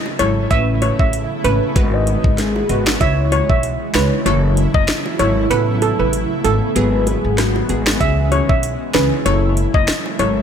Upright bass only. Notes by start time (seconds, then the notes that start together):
0.19 G#1
0.51 A1
0.99 A1
1.45 G#1
1.76 G#1
2.24 G#1
2.70 G#1
3.01 C#2
3.50 B1
3.94 C#2
4.26 F#1
4.74 F#1
5.20 G#1
5.51 A1
5.99 A1
6.45 G#1
6.76 G#1
7.24 G#1
7.70 G#1
8.01 C#2
8.49 B1
8.94 C#2
9.26 F#1
9.74 F#1
10.19 G#1